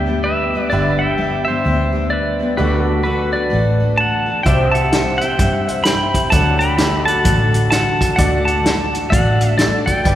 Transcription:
Already playing: D2 G4 B4 D5 E5 G5
0.06 G3 B3 D4 G4
0.24 B4 E5
0.54 G3 B3 D4 G4
0.70 G1 G2 D3 G3 B3 D4 G4 B4 D5 E5 B5
0.99 E5 G5
1.18 G3 B3 D4 G4
1.45 B3 D4 G4 C5 E5
1.50 G3
1.64 D2 G3 B3 D4 G4
1.93 G3 B3 D4 G4
2.10 B4 D5
2.39 G3 B3 D4 G4
2.57 D2 D3 A3 D4 F#4 G4 A4 B4 D5
2.78 F#4
2.83 A4
3.03 A3 D4 F#4 A4 B4
3.32 D4 F#4 A4 B4 D5
3.50 A1 A3 D4 F#4 A4
3.80 D4 F#4 A4
3.98 F#5 A5
4.26 D4 F#4 A4
4.43 C2 C3 G3 C4 E4 F#4 G4 C5 E5 G5, kick, closed hi-hat
4.48 D5
4.66 G4
4.72 E5 F#5 A5, closed hi-hat
4.91 G3 C4 E4 C5, snare, closed hi-hat
5.18 E4 C5 E5 G5, closed hi-hat
5.23 C4
5.37 G2 G3 C4 E4 C5, kick, closed hi-hat
5.66 E4 G4 C5 E5 F#5, closed hi-hat
5.70 C4
5.84 G5 B5, snare, closed hi-hat
6.13 C4 E4 C5, kick, closed hi-hat
6.30 D2 D3 F#3 A3 D4 F#4 A4 D5 F#5 A5, kick, closed hi-hat
6.59 G5 B5, closed hi-hat
6.78 A3 D4 F#4 G4 A4 E5, snare, closed hi-hat
6.99 F#4
7.05 F#4 A4 D5 F#5 A5, closed hi-hat
7.10 D4
7.23 A1 A3 D4 F#4 A4, kick, closed hi-hat
7.52 D4 F#4 A4, closed hi-hat
7.71 F#5 A5, snare, closed hi-hat
7.99 D4 F#4 A4, kick, closed hi-hat
8.16 D2 D3 A3 D4 F#4 A4 D5 F#5, kick, closed hi-hat
8.45 F#5 A5, closed hi-hat
8.64 A3 D4 F#4 A4, snare, closed hi-hat
8.93 D4 F#4 A4, closed hi-hat
9.10 A1 A3 D4 F#4 A4 D5 F#5, kick, closed hi-hat
9.40 D4 F#4 A4, closed hi-hat
9.58 A4 D5, snare, closed hi-hat
9.86 D4 F#4 A4 D5 G5, kick, closed hi-hat
10.04 G1 G2 D3 G3 D4 G4 B4 D5, kick, closed hi-hat

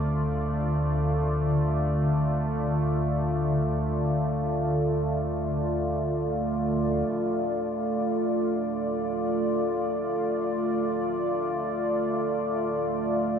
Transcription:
Already playing: D2 D3 A3 C4 F4 C5 D5
7.10 D2 D3 A3 A4

